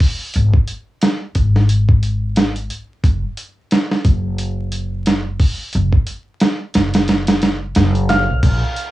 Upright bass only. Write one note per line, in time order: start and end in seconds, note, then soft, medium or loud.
0.36 0.52 G#1 medium
1.36 2.68 G#1 medium
3.04 3.21 F#1 medium
4.05 5.37 F#1 medium
5.75 5.92 F#1 medium
6.75 7.76 F#1 medium
7.77 8.26 F#1 loud
8.30 8.42 A#1 medium
8.43 8.61 A#1 medium